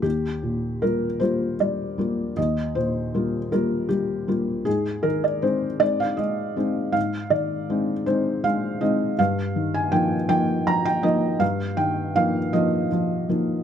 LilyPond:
<<
  \new Staff \with { instrumentName = "Felt piano" } { \time 6/8 \key ees \major \tempo 4. = 53 g'4 bes'8 c''8 d''4 | ees''8 c''4 bes'8 g'4 | aes'8 bes'16 d''16 c''8 d''16 f''16 ees''4 | f''8 d''4 c''8 f''8 ees''8 |
f''8. aes''16 g''8 g''8 bes''16 g''16 ees''8 | f''8 g''8 f''8 ees''8 r4 | }
  \new Staff \with { instrumentName = "Felt piano" } { \time 6/8 \key ees \major ees,8 bes,8 <g bes f'>8 <g bes f'>8 g8 <g bes f'>8 | ees,8 bes,8 <g bes f'>8 <g bes f'>8 g8 <g bes f'>8 | aes,8 ees8 <aes c' ees'>8 <aes c' ees'>8 aes8 <aes c' ees'>8 | aes,8 ees8 <aes c' ees'>8 <aes c' ees'>8 aes8 <aes c' ees'>8 |
g,8 ees8 <f bes ees'>8 <f bes ees'>8 f8 <f bes ees'>8 | g,8 ees8 <f bes ees'>8 <f bes ees'>8 f8 <f bes ees'>8 | }
>>